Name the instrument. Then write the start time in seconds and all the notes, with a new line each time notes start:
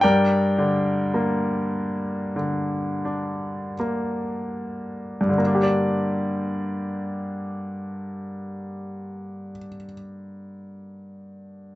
grand piano
0.01 G2 A#4 D5 G5
0.58 D3
1.14 A#3
2.36 D3
3.05 D4
3.80 A#3
5.21 G2
5.29 D3
5.38 A#3
5.46 D4
5.55 G4
5.63 D5